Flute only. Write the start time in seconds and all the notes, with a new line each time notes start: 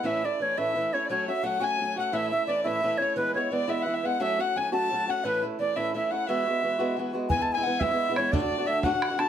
0.06 E5
0.25 D5
0.42 C#5
0.58 E5
0.93 C#5
1.10 C#5
1.28 E5
1.44 F#5
1.61 G#5
1.96 F#5
2.13 E5
2.31 E5
2.47 D5
2.63 E5
2.98 C#5
3.16 B4
3.35 C#5
3.52 D5
3.70 E5
4.06 F#5
4.22 E5
4.40 F#5
4.57 G#5
4.73 A5
5.08 F#5
5.24 B4
5.60 D5
5.77 E5
5.96 E5
6.12 F#5
6.28 E5
7.30 G#5
7.42 A5
7.52 G#5
7.63 F#5
7.80 E5
8.16 C#5
8.32 D5
8.67 E5
8.83 F#5
9.19 A5